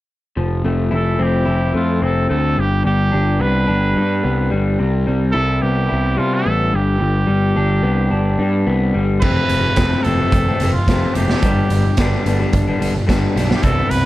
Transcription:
0.37 F1 F3
0.64 F1 A3
0.91 F1 E4
0.95 A4
1.19 F1 C4 G4
1.45 F1 E4
1.74 F2 A3 F4
2.02 F1 C4 A4
2.29 D2 A3 A4
2.56 G1 G2 G4
2.84 G1 G3 G4
3.12 G1 D4
3.39 C2 B3 B4
3.67 G1 D4
3.96 G2 G3
4.23 C2 B3
4.51 G1 G3
4.79 C2 C3
5.07 C2 G3
5.32 C2 E4 A4
5.62 C2 B3 G4
5.89 C2 E4
6.17 C3 G3 F4
6.34 A4
6.44 A1 B3
6.73 G1 G2 G4
6.99 G1 G2
7.27 G1 G3
7.56 G1 D4
7.83 C2 B3
8.11 G1 D4
8.39 G2 G3
8.67 C2 B3
8.94 G1 G3
9.21 F2 C3 E3 A3 C4 B4, kick, crash
9.49 F1, closed hi-hat
9.65 muted clean electric guitar stroke
9.76 F1 F2 C3 E3 A3 C4, kick, snare, closed hi-hat
10.03 F1 C3 E3 A3 C4 A4, closed hi-hat
10.20 E3 A3 C4
10.32 F1, kick, closed hi-hat
10.48 E3 A3 C4
10.60 F1 C3 E3 A3, closed hi-hat
10.64 C4
10.72 F4, muted clean electric guitar stroke
10.88 F1 F2 C3 E3 A3 C4, kick, snare, closed hi-hat
11.14 F1 C3 E3 A3 C4 G4, closed hi-hat
11.29 E3 A3 C4, snare
11.42 G1 G2 D3 G3 B3 D4, kick, closed hi-hat
11.70 G1, closed hi-hat
11.86 muted clean electric guitar stroke
11.97 G1 G2 D3 G3 B3 D4, kick, snare, closed hi-hat
12.26 G1 D3 G3 B3 D4, closed hi-hat
12.39 G3 B3 D4
12.53 G1, kick, closed hi-hat
12.67 G3 B3 D4
12.79 G1 D3 G3 B3 D4, closed hi-hat
12.95 muted clean electric guitar stroke
13.07 G1 G2 D3 G3 B3 D4, kick, snare, closed hi-hat
13.35 B1 D3 G3 B3 D4, snare, closed hi-hat
13.49 G3 B3 D4, snare
13.56 G4
13.63 C2 C3 G3 B3 E4 A4, kick, closed hi-hat
13.90 C2 B4, closed hi-hat

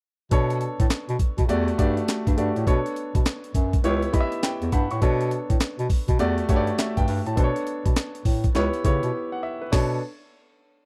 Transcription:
0.31 B2 B3 D4 A4 C#5, kick, closed hi-hat
0.50 closed hi-hat
0.61 closed hi-hat
0.80 A2, kick, closed hi-hat
0.90 snare, clap, closed hi-hat
1.09 B2, closed hi-hat
1.19 kick, closed hi-hat
1.38 B2, kick, closed hi-hat
1.49 E2 A3 F#4 G4 D5, closed hi-hat
1.68 closed hi-hat
1.78 G2 A3 F#4 G4 D5, kick, closed hi-hat
1.97 closed hi-hat
2.08 snare, clap, closed hi-hat
2.27 G2, kick, closed hi-hat
2.37 G2 A3 F#4 G4 D5, closed hi-hat
2.56 A2, closed hi-hat
2.66 B2 B3 D4 A4 C#5, kick, closed hi-hat
2.86 closed hi-hat
2.96 closed hi-hat
3.15 B2, kick, closed hi-hat
3.26 snare, clap, closed hi-hat
3.44 closed hi-hat
3.54 F#2, kick, closed hi-hat
3.73 kick, closed hi-hat
3.84 C#2 B3 E4 G4 C#5, closed hi-hat
4.02 closed hi-hat
4.13 B3 E4 G4 D#5 B5, kick, closed hi-hat
4.20 E5
4.32 closed hi-hat
4.43 G5, snare, clap, closed hi-hat
4.62 E2, closed hi-hat
4.72 G2 F#5 B5, kick, closed hi-hat
4.91 A2 C#6, closed hi-hat
5.01 B2 B3 D4 A4 C#5, kick, closed hi-hat
5.21 closed hi-hat
5.31 closed hi-hat
5.50 A2, kick, closed hi-hat
5.60 snare, clap, closed hi-hat
5.79 B2, closed hi-hat
5.90 kick, open hi-hat
6.08 B2, kick, closed hi-hat
6.19 E2 A3 F#4 G4 D5, closed hi-hat
6.38 closed hi-hat
6.49 G2 A3 F#4 G4 C#5, kick, closed hi-hat
6.56 D5
6.67 closed hi-hat
6.78 E5, snare, clap, closed hi-hat
6.97 G2 G5, kick, closed hi-hat
7.08 G2, open hi-hat
7.26 A2 A5, closed hi-hat
7.36 B2 B3 D4 A4 C5, kick, closed hi-hat
7.44 C#5
7.56 closed hi-hat
7.67 closed hi-hat
7.86 B2, kick, closed hi-hat
7.96 snare, clap, closed hi-hat
8.15 closed hi-hat
8.25 A2, kick, open hi-hat
8.44 kick, closed hi-hat
8.55 C#2 B3 E4 G4 C#5, snare, closed hi-hat
8.73 closed hi-hat
8.84 C#3 B3 E4 G4 C#5, kick, closed hi-hat
9.03 B2, closed hi-hat
9.32 F#5
9.43 E5
9.62 B4
9.72 B2 B3 D4 A4 C#5, kick, snare, crash

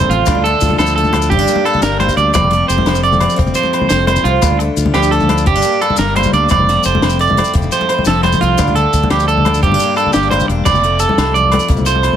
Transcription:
Already playing: A#2 F3 A3 C4 C5
0.01 high conga, low conga
0.09 A1 C3 F4, closed hi-hat
0.18 low conga
0.26 D2 D3 D4, kick, closed hi-hat, muted conga, low conga, low agogo, maracas
0.35 high conga, low conga
0.44 A3 A4, closed hi-hat
0.61 D2 F4, kick, closed hi-hat, maracas
0.69 muted conga, high conga, low conga
0.78 D2 F3 A4, snare, closed hi-hat, low agogo, maracas
0.86 low conga, maracas
0.95 A3 A4, closed hi-hat, low conga
1.04 high conga, low conga, maracas
1.13 D4, closed hi-hat, muted conga, low conga, low agogo
1.22 maracas
1.30 G1 G2 C4 G4, kick, closed hi-hat
1.37 D4, high conga, low conga, maracas
1.48 A#3, closed hi-hat, maracas
1.56 muted conga, low conga
1.65 G4 A4, closed hi-hat, low agogo
1.73 high conga, low conga, maracas
1.82 G1 G3 A#4, snare, closed hi-hat, low conga, maracas
1.92 low conga
2.00 A#3 C5, closed hi-hat, muted conga, low agogo
2.08 high conga, low conga, maracas
2.17 D2 D4 D5, closed hi-hat
2.34 F1 F2 C4 D5, kick, closed hi-hat, muted conga, low agogo, maracas
2.44 high conga, low conga
2.51 A3, closed hi-hat
2.68 F1 G4 C5, closed hi-hat, maracas
2.78 muted conga, high conga, low conga
2.86 F1 F3, snare, closed hi-hat, low conga, low agogo
2.95 maracas
3.03 A3 D5, closed hi-hat
3.12 high conga, low conga, maracas
3.20 C4, closed hi-hat, muted conga, low agogo
3.29 low conga, maracas
3.36 F1 F2 C4, kick, closed hi-hat
3.47 high conga, low conga, maracas
3.54 A3 C5, closed hi-hat, maracas
3.63 muted conga, maracas
3.73 C5, closed hi-hat, low agogo
3.81 high conga, low conga
3.89 F1 A2 C5, snare, closed hi-hat, maracas
4.07 A#2 C5, closed hi-hat, muted conga, low agogo
4.16 low conga, maracas
4.24 C2 C3 F4, closed hi-hat
4.34 low conga
4.42 D2 D3 D4, kick, closed hi-hat, muted conga, low agogo, maracas
4.51 high conga, low conga
4.59 A3, muted clean electric guitar stroke, closed hi-hat
4.77 D2 F4, closed hi-hat, maracas
4.86 muted conga, high conga, low conga
4.94 D2 F3 G4, snare, closed hi-hat, low conga, low agogo
5.03 maracas
5.11 A3 A4, closed hi-hat
5.20 high conga, low conga, maracas
5.29 D4, closed hi-hat, muted conga, low agogo
5.38 low conga, maracas
5.46 G1 G2 C4 G4, kick, closed hi-hat
5.55 D4, high conga, low conga, maracas
5.62 A#3, closed hi-hat, maracas
5.72 maracas
5.81 A4, muted steel-string acoustic guitar stroke, closed hi-hat, low agogo
5.90 high conga, low conga
5.96 G1 G3 A#4, snare, closed hi-hat, maracas
6.16 A#3 C5, closed hi-hat, muted conga, low agogo
6.23 high conga, low conga, maracas
6.33 D2 D4 D5, closed hi-hat
6.43 low conga
6.49 F1 F2 C4 D5, kick, closed hi-hat, muted conga, low agogo, maracas
6.59 high conga, low conga
6.69 A3, snare, closed hi-hat
6.83 F1 G4 C5, closed hi-hat, maracas
6.95 muted conga, high conga, low conga
7.02 F1, snare, closed hi-hat, low conga, low agogo
7.09 maracas
7.19 A3 D5, closed hi-hat
7.27 high conga, low conga, maracas
7.37 C4, closed hi-hat, muted conga, low agogo
7.44 low conga, maracas
7.54 F1 F2 C4, kick, closed hi-hat
7.62 low conga, maracas
7.72 A3 C5, closed hi-hat, maracas
7.81 muted conga
7.89 C5, closed hi-hat, low agogo
7.99 high conga, low conga
8.05 F1 F3 A4, snare, closed hi-hat, maracas
8.23 A3 C5, closed hi-hat, muted conga, low agogo
8.32 high conga, low conga, maracas
8.41 C2 C4 F4, closed hi-hat
8.51 low conga
8.58 D2 D3 D4, kick, closed hi-hat, muted conga, low conga, low agogo, maracas
8.67 high conga, low conga, maracas
8.75 A3 A4, closed hi-hat, low conga, maracas
8.93 D2, kick, closed hi-hat, maracas
9.02 muted conga, high conga, low conga, maracas
9.10 D2 F3 G4, snare, closed hi-hat, low conga, low agogo
9.20 maracas
9.28 A3 A4, closed hi-hat
9.38 high conga, low conga
9.45 D4, closed hi-hat, muted conga, low agogo
9.54 low conga, maracas
9.63 G1 G2 C4 G4, kick, closed hi-hat
9.72 D4, high conga, low conga
9.80 A#3, closed hi-hat, maracas
9.96 G4 A4, closed hi-hat, low agogo
10.06 high conga, low conga
10.13 G1 G3 G4, snare, closed hi-hat, maracas
10.22 maracas
10.30 A#3 C5, closed hi-hat, muted conga, low agogo
10.40 high conga, low conga, maracas
10.48 E1 D4, muted clean electric guitar stroke, closed hi-hat
10.65 F1 F2 D5, kick, crash, muted conga, low agogo, maracas
10.74 high conga, low conga, maracas
10.84 A3, closed hi-hat
10.99 A4, closed hi-hat, low conga, maracas
11.09 muted conga, high conga, low conga
11.18 C2 C3, snare, closed hi-hat, low agogo
11.34 F3 D5, closed hi-hat
11.44 high conga
11.52 A3, closed hi-hat, muted conga, low agogo
11.59 maracas
11.68 C2 F2, kick, closed hi-hat
11.76 high conga, low conga, maracas
11.86 A3 C5, closed hi-hat, maracas
11.95 muted conga
12.03 A4, closed hi-hat, low agogo, maracas
12.13 high conga, low conga

